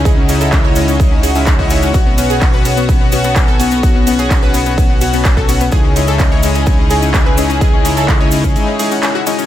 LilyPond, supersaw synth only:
\new Staff \with { instrumentName = "Supersaw synth" } { \time 4/4 \key cis \minor \tempo 4 = 127 <gis dis' e' cis'' dis''>16 r16 <gis dis' e' cis'' dis''>16 <gis dis' e' cis'' e''>16 <gis e' dis''>8 <gis dis' e' cis'' dis''>8 <gis dis' e' cis'' dis''>16 r8 <gis dis' e' cis'' e''>16 r16 <gis dis' e' cis'' dis''>16 <gis dis' e' cis'' e''>16 <gis dis' e' cis'' fis''>16 | <b cis' fis' cis'' fis''>16 r16 <b cis' fis' cis'' fis''>16 <b cis' fis' cis'' gis''>16 <b cis' fis' cis'' fis''>8 <b cis' fis' cis'' fis''>8 <b cis' fis' cis'' fis''>16 r16 <b cis' fis' cis'' fis''>16 <b cis' fis' cis'' a''>16 r8 <b cis' fis' cis'' fis''>16 r16 | <b cis' fis' cis'' fis''>16 r16 <b cis' fis' cis'' fis''>16 <b cis' fis' cis'' gis''>16 <b cis' fis' cis'' fis''>8 <b cis' fis' cis'' fis''>8 <b cis' fis' cis'' fis''>16 r16 <b cis' fis' cis'' fis''>16 <b cis' fis' cis'' a''>16 <b cis' fis' cis'' gis''>16 r16 <b cis' fis' cis'' fis''>16 r16 | <gis dis' e' cis'' dis''>16 r16 <gis dis' e' cis'' dis''>16 <gis dis' e' cis'' e''>16 r8 <gis dis' e' cis'' dis''>8 <gis dis' e' cis'' dis''>16 r16 <gis dis' e' cis'' dis''>16 <gis dis' e' cis'' fis''>16 <gis dis' e' cis'' e''>16 r16 <gis dis' e' cis'' dis''>16 r16 |
<gis dis' e' cis'' dis''>16 r16 <gis dis' e' cis'' dis''>16 <gis dis' e' cis'' e''>16 <gis dis' e' dis''>8 <gis dis' e' cis'' dis''>8 <gis dis' e' cis'' dis''>16 r16 <gis dis' e' cis'' dis''>16 <gis dis' e' cis'' fis''>16 <gis dis' e' cis'' e''>16 r16 <gis dis' e' cis'' dis''>16 r16 | }